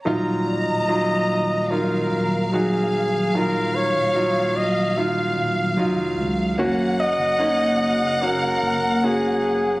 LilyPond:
<<
  \new Staff \with { instrumentName = "Violin section" } { \time 4/4 \key ees \minor \tempo 4 = 74 bes''2 f''2~ | f''1 | ges''1 | }
  \new Staff \with { instrumentName = "Flugelhorn" } { \time 4/4 \key ees \minor r8 ees''4. bes'4 aes'4 | bes'8 des''4 ees''8 f''4. r8 | r8 ees''4. bes'4 aes'4 | }
  \new Staff \with { instrumentName = "Grand piano" } { \time 4/4 \key ees \minor <ges ees' f'>4 <ges ees' f'>4 <ges ees' f'>4 <ges ees' ges'>4 | <ges ees' f'>4 <ges ees' f'>4 <ges ees' f'>4 <ges ees' f'>4 | <bes des' ges'>4 <bes des' ees'>4 <bes des' ges'>4 <bes des' ges'>4 | }
  \new Staff \with { instrumentName = "Grand piano" } { \clef bass \time 4/4 \key ees \minor ees4. r2 r8 | ees4. r2 r8 | r1 | }
  \new Staff \with { instrumentName = "Ambient pad" } { \clef bass \time 4/4 \key ees \minor <ees ges f''>1~ | <ees ges f''>1 | <des bes ges'>1 | }
  \new Staff \with { instrumentName = "Sub bass" } { \clef bass \time 4/4 \key ees \minor ees,,8. ees,,4.~ ees,,16 ees,,4. | ees,,8. ees,,4.~ ees,,16 ees,,8 f,,8 des,8 | ges,,8. ges,,4.~ ges,,16 ges,,4. | }
>>